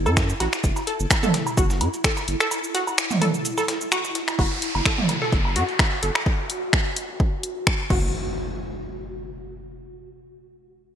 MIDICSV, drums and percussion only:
0, 0, Header, 1, 2, 480
1, 0, Start_track
1, 0, Key_signature, 3, "minor"
1, 0, Tempo, 468750
1, 652, Time_signature, 4, 2, 24, 8
1, 11214, End_track
2, 0, Start_track
2, 0, Title_t, "Drums"
2, 62, Note_on_c, 9, 77, 41
2, 62, Note_on_c, 9, 82, 29
2, 164, Note_off_c, 9, 77, 0
2, 165, Note_off_c, 9, 82, 0
2, 173, Note_on_c, 9, 26, 91
2, 173, Note_on_c, 9, 36, 118
2, 173, Note_on_c, 9, 38, 118
2, 173, Note_on_c, 9, 42, 85
2, 173, Note_on_c, 9, 82, 62
2, 275, Note_off_c, 9, 26, 0
2, 275, Note_off_c, 9, 38, 0
2, 275, Note_off_c, 9, 42, 0
2, 275, Note_off_c, 9, 82, 0
2, 276, Note_off_c, 9, 36, 0
2, 301, Note_on_c, 9, 82, 43
2, 404, Note_off_c, 9, 82, 0
2, 412, Note_on_c, 9, 77, 43
2, 413, Note_on_c, 9, 38, 56
2, 413, Note_on_c, 9, 42, 66
2, 514, Note_off_c, 9, 77, 0
2, 515, Note_off_c, 9, 38, 0
2, 515, Note_off_c, 9, 42, 0
2, 542, Note_on_c, 9, 26, 61
2, 542, Note_on_c, 9, 82, 28
2, 543, Note_on_c, 9, 38, 55
2, 644, Note_off_c, 9, 26, 0
2, 644, Note_off_c, 9, 82, 0
2, 645, Note_off_c, 9, 38, 0
2, 653, Note_on_c, 9, 36, 103
2, 653, Note_on_c, 9, 42, 96
2, 653, Note_on_c, 9, 82, 65
2, 755, Note_off_c, 9, 82, 0
2, 756, Note_off_c, 9, 36, 0
2, 756, Note_off_c, 9, 42, 0
2, 781, Note_on_c, 9, 77, 40
2, 782, Note_on_c, 9, 82, 44
2, 783, Note_on_c, 9, 38, 42
2, 883, Note_off_c, 9, 77, 0
2, 885, Note_off_c, 9, 38, 0
2, 885, Note_off_c, 9, 82, 0
2, 893, Note_on_c, 9, 42, 91
2, 894, Note_off_c, 9, 42, 0
2, 894, Note_on_c, 9, 42, 71
2, 997, Note_off_c, 9, 42, 0
2, 1022, Note_on_c, 9, 82, 31
2, 1124, Note_off_c, 9, 82, 0
2, 1132, Note_on_c, 9, 26, 91
2, 1132, Note_on_c, 9, 82, 67
2, 1133, Note_on_c, 9, 36, 108
2, 1133, Note_on_c, 9, 77, 43
2, 1134, Note_on_c, 9, 38, 109
2, 1134, Note_on_c, 9, 42, 85
2, 1235, Note_off_c, 9, 26, 0
2, 1235, Note_off_c, 9, 36, 0
2, 1235, Note_off_c, 9, 77, 0
2, 1235, Note_off_c, 9, 82, 0
2, 1236, Note_off_c, 9, 38, 0
2, 1236, Note_off_c, 9, 42, 0
2, 1260, Note_on_c, 9, 45, 90
2, 1262, Note_on_c, 9, 82, 44
2, 1363, Note_off_c, 9, 45, 0
2, 1364, Note_off_c, 9, 82, 0
2, 1373, Note_on_c, 9, 38, 100
2, 1373, Note_on_c, 9, 42, 81
2, 1475, Note_off_c, 9, 38, 0
2, 1475, Note_off_c, 9, 42, 0
2, 1501, Note_on_c, 9, 77, 45
2, 1502, Note_on_c, 9, 82, 31
2, 1603, Note_off_c, 9, 77, 0
2, 1605, Note_off_c, 9, 82, 0
2, 1613, Note_on_c, 9, 36, 114
2, 1613, Note_on_c, 9, 42, 93
2, 1613, Note_on_c, 9, 82, 69
2, 1715, Note_off_c, 9, 36, 0
2, 1715, Note_off_c, 9, 42, 0
2, 1715, Note_off_c, 9, 82, 0
2, 1742, Note_on_c, 9, 38, 55
2, 1742, Note_on_c, 9, 82, 43
2, 1844, Note_off_c, 9, 38, 0
2, 1844, Note_off_c, 9, 82, 0
2, 1853, Note_on_c, 9, 42, 66
2, 1853, Note_on_c, 9, 77, 47
2, 1956, Note_off_c, 9, 42, 0
2, 1956, Note_off_c, 9, 77, 0
2, 1982, Note_on_c, 9, 82, 29
2, 1983, Note_on_c, 9, 42, 44
2, 2085, Note_off_c, 9, 42, 0
2, 2085, Note_off_c, 9, 82, 0
2, 2093, Note_on_c, 9, 26, 87
2, 2093, Note_on_c, 9, 36, 115
2, 2093, Note_on_c, 9, 38, 114
2, 2093, Note_on_c, 9, 42, 89
2, 2093, Note_on_c, 9, 82, 65
2, 2195, Note_off_c, 9, 36, 0
2, 2195, Note_off_c, 9, 38, 0
2, 2195, Note_off_c, 9, 42, 0
2, 2196, Note_off_c, 9, 26, 0
2, 2196, Note_off_c, 9, 82, 0
2, 2221, Note_on_c, 9, 77, 40
2, 2222, Note_on_c, 9, 82, 44
2, 2223, Note_on_c, 9, 38, 48
2, 2324, Note_off_c, 9, 77, 0
2, 2325, Note_off_c, 9, 38, 0
2, 2325, Note_off_c, 9, 82, 0
2, 2333, Note_on_c, 9, 42, 64
2, 2436, Note_off_c, 9, 42, 0
2, 2463, Note_on_c, 9, 26, 63
2, 2463, Note_on_c, 9, 38, 45
2, 2463, Note_on_c, 9, 82, 31
2, 2565, Note_off_c, 9, 26, 0
2, 2565, Note_off_c, 9, 38, 0
2, 2565, Note_off_c, 9, 82, 0
2, 2573, Note_on_c, 9, 42, 92
2, 2573, Note_on_c, 9, 77, 44
2, 2573, Note_on_c, 9, 82, 68
2, 2675, Note_off_c, 9, 77, 0
2, 2676, Note_off_c, 9, 42, 0
2, 2676, Note_off_c, 9, 82, 0
2, 2702, Note_on_c, 9, 82, 44
2, 2804, Note_off_c, 9, 82, 0
2, 2812, Note_on_c, 9, 42, 92
2, 2813, Note_off_c, 9, 42, 0
2, 2813, Note_on_c, 9, 38, 61
2, 2813, Note_on_c, 9, 42, 67
2, 2915, Note_off_c, 9, 38, 0
2, 2915, Note_off_c, 9, 42, 0
2, 2942, Note_on_c, 9, 82, 31
2, 2943, Note_on_c, 9, 77, 45
2, 3045, Note_off_c, 9, 77, 0
2, 3045, Note_off_c, 9, 82, 0
2, 3053, Note_on_c, 9, 26, 96
2, 3053, Note_on_c, 9, 38, 113
2, 3053, Note_on_c, 9, 42, 85
2, 3053, Note_on_c, 9, 82, 69
2, 3156, Note_off_c, 9, 26, 0
2, 3156, Note_off_c, 9, 38, 0
2, 3156, Note_off_c, 9, 42, 0
2, 3156, Note_off_c, 9, 82, 0
2, 3182, Note_on_c, 9, 38, 55
2, 3182, Note_on_c, 9, 45, 92
2, 3183, Note_on_c, 9, 82, 47
2, 3284, Note_off_c, 9, 45, 0
2, 3285, Note_off_c, 9, 38, 0
2, 3285, Note_off_c, 9, 82, 0
2, 3293, Note_on_c, 9, 42, 86
2, 3294, Note_on_c, 9, 45, 81
2, 3294, Note_on_c, 9, 77, 42
2, 3396, Note_off_c, 9, 42, 0
2, 3396, Note_off_c, 9, 45, 0
2, 3396, Note_off_c, 9, 77, 0
2, 3423, Note_on_c, 9, 82, 31
2, 3525, Note_off_c, 9, 82, 0
2, 3533, Note_on_c, 9, 42, 93
2, 3533, Note_on_c, 9, 82, 69
2, 3635, Note_off_c, 9, 42, 0
2, 3636, Note_off_c, 9, 82, 0
2, 3663, Note_on_c, 9, 38, 41
2, 3663, Note_on_c, 9, 77, 46
2, 3663, Note_on_c, 9, 82, 45
2, 3765, Note_off_c, 9, 38, 0
2, 3765, Note_off_c, 9, 82, 0
2, 3766, Note_off_c, 9, 77, 0
2, 3772, Note_on_c, 9, 38, 107
2, 3772, Note_on_c, 9, 42, 79
2, 3773, Note_off_c, 9, 42, 0
2, 3773, Note_on_c, 9, 42, 93
2, 3874, Note_off_c, 9, 38, 0
2, 3875, Note_off_c, 9, 42, 0
2, 3902, Note_on_c, 9, 82, 31
2, 4004, Note_off_c, 9, 82, 0
2, 4013, Note_on_c, 9, 26, 97
2, 4013, Note_on_c, 9, 42, 62
2, 4013, Note_on_c, 9, 82, 66
2, 4014, Note_on_c, 9, 77, 44
2, 4115, Note_off_c, 9, 26, 0
2, 4115, Note_off_c, 9, 42, 0
2, 4115, Note_off_c, 9, 82, 0
2, 4117, Note_off_c, 9, 77, 0
2, 4142, Note_on_c, 9, 38, 46
2, 4142, Note_on_c, 9, 82, 44
2, 4244, Note_off_c, 9, 38, 0
2, 4244, Note_off_c, 9, 82, 0
2, 4251, Note_on_c, 9, 42, 96
2, 4253, Note_off_c, 9, 42, 0
2, 4253, Note_on_c, 9, 38, 55
2, 4253, Note_on_c, 9, 42, 68
2, 4355, Note_off_c, 9, 38, 0
2, 4355, Note_off_c, 9, 42, 0
2, 4381, Note_on_c, 9, 26, 64
2, 4381, Note_on_c, 9, 82, 32
2, 4382, Note_on_c, 9, 38, 56
2, 4384, Note_on_c, 9, 77, 43
2, 4483, Note_off_c, 9, 26, 0
2, 4483, Note_off_c, 9, 82, 0
2, 4485, Note_off_c, 9, 38, 0
2, 4486, Note_off_c, 9, 77, 0
2, 4493, Note_on_c, 9, 36, 110
2, 4493, Note_on_c, 9, 42, 85
2, 4496, Note_on_c, 9, 77, 42
2, 4595, Note_off_c, 9, 42, 0
2, 4596, Note_off_c, 9, 36, 0
2, 4598, Note_off_c, 9, 77, 0
2, 4622, Note_on_c, 9, 38, 43
2, 4724, Note_off_c, 9, 38, 0
2, 4732, Note_on_c, 9, 42, 93
2, 4733, Note_off_c, 9, 42, 0
2, 4733, Note_on_c, 9, 42, 67
2, 4835, Note_off_c, 9, 42, 0
2, 4865, Note_on_c, 9, 77, 47
2, 4967, Note_off_c, 9, 77, 0
2, 4972, Note_on_c, 9, 26, 93
2, 4973, Note_on_c, 9, 36, 112
2, 4973, Note_on_c, 9, 38, 106
2, 4973, Note_on_c, 9, 42, 82
2, 5074, Note_off_c, 9, 26, 0
2, 5075, Note_off_c, 9, 36, 0
2, 5075, Note_off_c, 9, 38, 0
2, 5075, Note_off_c, 9, 42, 0
2, 5103, Note_on_c, 9, 45, 96
2, 5205, Note_off_c, 9, 45, 0
2, 5212, Note_on_c, 9, 42, 88
2, 5213, Note_off_c, 9, 42, 0
2, 5213, Note_on_c, 9, 42, 66
2, 5214, Note_on_c, 9, 77, 42
2, 5316, Note_off_c, 9, 42, 0
2, 5316, Note_off_c, 9, 77, 0
2, 5343, Note_on_c, 9, 38, 52
2, 5445, Note_off_c, 9, 38, 0
2, 5453, Note_on_c, 9, 36, 115
2, 5453, Note_on_c, 9, 42, 86
2, 5555, Note_off_c, 9, 36, 0
2, 5556, Note_off_c, 9, 42, 0
2, 5583, Note_on_c, 9, 77, 44
2, 5685, Note_off_c, 9, 77, 0
2, 5692, Note_on_c, 9, 42, 90
2, 5693, Note_off_c, 9, 42, 0
2, 5693, Note_on_c, 9, 42, 67
2, 5796, Note_off_c, 9, 42, 0
2, 5822, Note_on_c, 9, 42, 41
2, 5924, Note_off_c, 9, 42, 0
2, 5932, Note_on_c, 9, 26, 92
2, 5933, Note_on_c, 9, 36, 121
2, 5933, Note_on_c, 9, 38, 119
2, 5933, Note_on_c, 9, 42, 86
2, 5934, Note_on_c, 9, 77, 45
2, 6035, Note_off_c, 9, 26, 0
2, 6035, Note_off_c, 9, 36, 0
2, 6035, Note_off_c, 9, 38, 0
2, 6035, Note_off_c, 9, 42, 0
2, 6037, Note_off_c, 9, 77, 0
2, 6061, Note_on_c, 9, 38, 44
2, 6164, Note_off_c, 9, 38, 0
2, 6172, Note_on_c, 9, 42, 65
2, 6275, Note_off_c, 9, 42, 0
2, 6301, Note_on_c, 9, 26, 63
2, 6301, Note_on_c, 9, 38, 44
2, 6304, Note_on_c, 9, 77, 41
2, 6403, Note_off_c, 9, 38, 0
2, 6404, Note_off_c, 9, 26, 0
2, 6406, Note_off_c, 9, 77, 0
2, 6413, Note_on_c, 9, 36, 116
2, 6515, Note_off_c, 9, 36, 0
2, 6652, Note_on_c, 9, 42, 96
2, 6755, Note_off_c, 9, 42, 0
2, 6892, Note_on_c, 9, 26, 97
2, 6893, Note_on_c, 9, 36, 117
2, 6995, Note_off_c, 9, 26, 0
2, 6996, Note_off_c, 9, 36, 0
2, 7132, Note_on_c, 9, 42, 95
2, 7235, Note_off_c, 9, 42, 0
2, 7373, Note_on_c, 9, 36, 118
2, 7475, Note_off_c, 9, 36, 0
2, 7612, Note_on_c, 9, 42, 95
2, 7715, Note_off_c, 9, 42, 0
2, 7853, Note_on_c, 9, 26, 95
2, 7853, Note_on_c, 9, 36, 125
2, 7955, Note_off_c, 9, 26, 0
2, 7955, Note_off_c, 9, 36, 0
2, 8093, Note_on_c, 9, 36, 115
2, 8093, Note_on_c, 9, 49, 90
2, 8195, Note_off_c, 9, 36, 0
2, 8195, Note_off_c, 9, 49, 0
2, 11214, End_track
0, 0, End_of_file